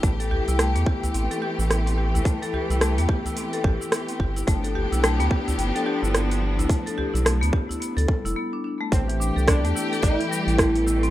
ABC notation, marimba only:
X:1
M:4/4
L:1/16
Q:"Swing 16ths" 1/4=108
K:Am
V:1 name="Marimba"
A, A G E A, B, G E C A G E B, C G E | A, A G E A, B, G E C A G E B, C G E | A, A G E A, B, G E B, A G E B, B, G E | A, A G E A, B, G E B, A G, E B, D D A, |
A, E, D A B, A, E A A, E, G, A A, B, E C |]